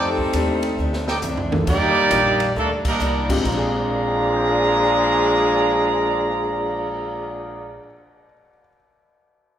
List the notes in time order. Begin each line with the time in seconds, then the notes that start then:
Already playing: F2 C3 D#3 G3 A3 C4 D4 D#4 A4
0.18 kick
0.33 D#2 F2 D#3 A3 C4 D4 D#4 G4, kick, hi-hat pedal, ride
0.63 ride
0.78 D2 F2 D#3 A3 D4
0.93 snare
1.08 D#4 A4 D5 G5, snare
1.22 C2 F2 D#3 A3 D4, floor tom, hi-hat pedal
1.37 floor tom
1.52 A#3 D4 D#4 F4 A4, floor tom
1.67 D#2 D#3 G3 A#3 D4 D#4 G4 D5, kick, crash
2.11 A#1 D#3 G3 A#3 D4 D#4 F4 G4, kick, hi-hat pedal, ride
2.40 ride
2.56 D2 D#3 G3 A3 A#3 D4 A4
2.84 D#3 G3 A#3 D4 D#4 A#4, muted upright bass stroke, kick, crash
3.00 C2 D#3 G3 A#3 D4, hi-hat pedal
3.29 A#2 G#3 C4 D4 F4 G4, kick, crash
3.38 A#2 F3
3.43 A#1 A#2 F3 G#3 D4 G#4 D5 F5 A#5, kick, crash
3.48 C4
3.52 D4
3.58 G#4
3.74 cymbal swell
3.91 A#4
3.98 D5
4.06 G5
4.15 A#5
4.25 D6
4.36 G6
4.48 A#6